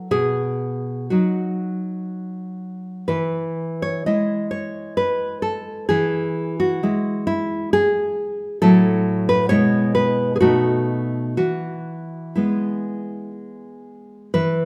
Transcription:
0.11 B2 G#4
1.10 F#3 D#4 F#4
3.08 E3 B4
3.82 C#5
4.06 G#3 E4 D#5
4.51 C#5
4.97 B4
5.42 A4
5.89 E3 G#4
6.60 F#4
6.83 G#3 E4
7.27 E4
7.73 G#4
8.62 A2 F#3 E4 A4
9.29 B4
9.49 B2 G#3 E4 C#5
9.95 B4
10.36 G#4
10.40 B2 A3 D#4 F#4
11.37 E3 F#4
12.36 G#3 B3 E4
14.34 E3 B4

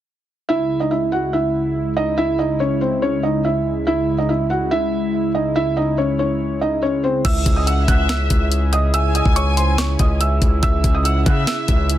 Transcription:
0.49 C#2 C#3 G#3 E4 E5
0.80 D#4 D#5
0.91 E4 E5
1.12 F#4 F#5
1.33 E4 E5
1.97 D#4 D#5
2.18 E4 E5
2.39 D#4 D#5
2.60 C#4 C#5
2.81 C4 C5
3.02 C#4 C#5
3.23 D#4 D#5
3.45 E4 E5
3.87 E4 E5
4.18 D#4 D#5
4.29 E4 E5
4.50 F#4 F#5
4.71 E4 E5
5.35 D#4 D#5
5.56 E4 E5
5.77 D#4 D#5
5.98 C#4 C#5
6.19 C#4 C#5
6.61 D#4 D#5
6.82 C#4 C#5
7.04 C4 C5
7.25 C#2 C#3 C#4 E4 G#4 E5 E6, kick, closed hi-hat, crash
7.46 C#2, kick, closed hi-hat
7.56 D#5 D#6
7.67 E5 F#5 E6, closed hi-hat
7.88 C#2 E5 F#5 F#6, kick, closed hi-hat
8.09 E5 E6, snare, closed hi-hat
8.30 C#2, kick, closed hi-hat
8.52 closed hi-hat
8.73 D#5 D#6, closed hi-hat
8.94 E5 G#5 E6, closed hi-hat
9.15 D#5 D#6, closed hi-hat
9.26 C#2, kick
9.36 C#5 C#6, closed hi-hat
9.57 C5 C6, closed hi-hat
9.78 C#5 C#6, snare, closed hi-hat
9.99 C#2 D#5 D#6, kick, closed hi-hat
10.21 E5 E6, closed hi-hat
10.42 C#2, kick, closed hi-hat
10.63 C#2 G#4 E5 E6, kick, closed hi-hat
10.84 C#2, kick, closed hi-hat
10.95 D#5 D#6
11.05 E5 F#5 E6, closed hi-hat
11.26 C#3 E5 F#5 F#6, kick, closed hi-hat
11.47 E5 E6, snare, closed hi-hat
11.68 C#2, kick, closed hi-hat
11.90 closed hi-hat

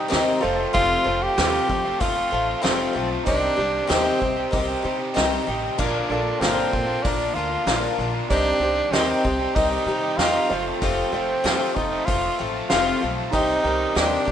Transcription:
Already playing: G3 C4 D#4 G4
0.10 D#2 C3 D#3 G3 C4 D#4 G4, snare, open hi-hat
0.41 F1 F2 C3 F3 A3 C4 F4 A4 C5
0.58 F3 A3 C4 F4
0.73 F1 F2 C3 F3 A3 C4 F4, kick, open hi-hat
1.04 F1 F3 A3 C4 F4 A4 C5
1.08 F4
1.22 G4
1.35 D#2 F2 C3 F3 A3 C4 F4, snare, open hi-hat
1.52 F3 A3 C4 F4
1.68 F1 A3 C4 F4, muted overdriven electric guitar stroke, kick
1.73 F3
1.85 F3 A3 C4 F4
2.00 F1 F3 A3 C4 F4, kick, open hi-hat
2.15 F3 A3 C4 F4
2.32 A1 F3 A3 C4 F4
2.48 F3 A3 C4 F4
2.63 F1 F2 C3 F3 A3 C4 F4, snare, open hi-hat
2.93 B1 F3 A3 C4 F4
2.98 F4
3.11 F3 A3 C4 F4
3.23 C2 C3 D#3 G3 D4 D#4 G4 C5, kick, open hi-hat
3.28 C4 G4
3.56 C2 D#3 G3 C4 G4 C5
3.61 G4
3.89 D#2 C3 D#3 G3 C4 D#4 G4, snare, open hi-hat
4.04 G3 C4 G4
4.19 C2 C4 D#4 G4, muted overdriven electric guitar stroke, kick
4.36 G3 C4 G4
4.51 C2 D#3 C4 D#4 G4, kick, open hi-hat
4.68 G3 C4 G4
4.82 C3 D#3 G3 C4 D#4 G4
4.87 G4
4.99 G3 C4 G4
5.15 C2 C3 D#3 G3 C4 D#4 G4, snare, open hi-hat
5.46 A1 D#3 G3 C4 D#4 G4
5.62 G3 C4 G4
5.78 A#1 A#2 D3 F3 A#3 D4 F4 A#4, kick, crash
6.09 A#1 D3 A#3 D4 F4 A4
6.39 G1 A#2 D3 F3 A#3 C4 D4 F4, snare, open hi-hat
6.56 A#3 D4 F4
6.72 A#1 D4 F4, muted overdriven electric guitar stroke, kick
6.76 A#3
6.86 A#3 D4 F4
7.03 A#1 F3 A#3 D4, kick, open hi-hat
7.08 F4
7.18 A#3 D4 F4
7.33 D2 D3 A#3 D4 F4
7.39 A#3
7.49 A#3 D4 F4
7.65 A#1 A#2 D3 F3 A#3 D4 F4, snare, open hi-hat
7.97 A#1 D3 A#3 D4 F4
8.02 A#3
8.13 A#3 D4 F4
8.28 C2 C3 D#3 G3 C4 D4 D#4 G4 C5, kick, open hi-hat
8.59 C2 D#3 G3 C4 G4 C5
8.91 D#2 C3 D#3 G3 C4 D#4, snare, open hi-hat
8.95 G4
9.08 G3 C4 G4
9.24 C2 C4 D#4 G4, muted overdriven electric guitar stroke, kick
9.39 G3 C4 G4
9.55 C2 D#3 C4 D#4 G4, kick, open hi-hat
9.71 G3 C4 G4
9.86 C3 D#3 G3 C4 D#4 G4
10.02 G3 C4 G4
10.17 E2 C3 D#3 G3 C4 D#4 F4, snare, open hi-hat
10.22 G4
10.48 F1 F2 C3 F3 F4 A4 C5
10.53 A3 C4 F4
10.67 F3 A3 C4 F4
10.81 F1 F2 C3 F3 A3 C4 F4, kick, open hi-hat
11.11 F1 F3 A3 F4 A4 C5
11.16 C4 F4
11.44 D#2 F2 C3 F3 A3 C4 F4, snare, open hi-hat
11.60 F3 A3 C4 F4
11.75 F1 A3 C4 D#4 F4, muted overdriven electric guitar stroke, kick
11.79 F3
11.92 F3 A3 C4 F4
12.05 F1 F3 A3 C4 F4, kick, open hi-hat
12.10 F4
12.22 F3 A3 C4 F4
12.39 A1 F3 A3 C4 F4
12.54 F3 A3 C4 F4
12.69 F1 F2 C3 F3 A3 C4 F4, snare, open hi-hat
13.01 B1 F3 A3 C4 F4
13.17 F3 A3 C4 F4
13.30 C2 C3 D#3 G3 D#4 G4 C5, kick, open hi-hat
13.35 C4 D#4 G4
13.62 C2 D#3 G3 C4 G4 A#4
13.67 D#4
13.94 D#2 C3 D#3 G3 C4 D4 G4, snare, open hi-hat
14.10 G3 C4 G4
14.25 C2 G4, muted overdriven electric guitar stroke, kick

